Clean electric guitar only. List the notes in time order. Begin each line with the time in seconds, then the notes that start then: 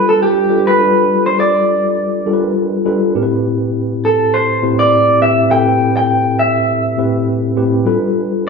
0.09 A4
0.23 G4
0.67 B4
1.26 C5
1.40 D5
4.05 A4
4.34 C5
4.79 D5
5.22 E5
5.51 G5
5.97 G5
6.39 E5